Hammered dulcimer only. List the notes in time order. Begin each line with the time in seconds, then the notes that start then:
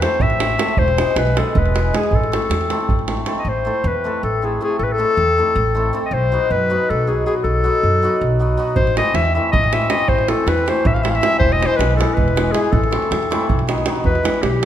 0.02 A3 C4 E4 A4
0.39 A3 C4 E4 A4
0.58 A3 C4 E4 A4
0.97 G#3 B3 E4 G#4
1.36 G#3 B3 E4 G#4
1.74 G#3 B3 E4 G#4
1.93 G#3 B3 E4 G#4
2.32 A3 C4 E4 A4
2.70 A3 C4 E4 A4
3.08 A3 C4 E4 A4
3.26 A3 C4 E4 A4
3.65 A3 C4 E4 A4
4.04 A3 C4 E4 A4
4.42 A3 C4 E4 A4
4.61 A3 C4 E4 A4
4.98 A3 C4 E4 A4
5.38 A3 C4 E4 A4
5.75 A3 C4 E4 A4
5.93 A3 C4 E4 A4
6.32 F#3 B3 D#4 F#4
6.70 F#3 B3 D#4 F#4
7.07 F#3 B3 D#4 F#4
7.26 F#3 B3 D#4 F#4
7.64 F#3 B3 D#4 F#4
8.02 F#3 B3 D#4 F#4
8.39 F#3 B3 D#4 F#4
8.57 F#3 B3 D#4 F#4
8.96 E3 A3 C4 E4
9.35 E3 A3 C4 E4
9.72 E3 A3 C4 E4
9.89 E3 A3 C4 E4
10.28 E3 A3 C4 E4
10.66 E3 A3 C4 E4
11.03 E3 A3 C4 E4
11.21 E3 A3 C4 E4
11.59 E3 G#3 B3 E4
11.98 E3 G#3 B3 E4
12.36 E3 G#3 B3 E4
12.54 E3 G#3 B3 E4
12.91 E3 A3 C4 E4
13.30 E3 A3 C4 E4
13.67 D#3 F#3 B3 D#4
13.86 D#3 F#3 B3 D#4
14.23 E3 G3 B3 E4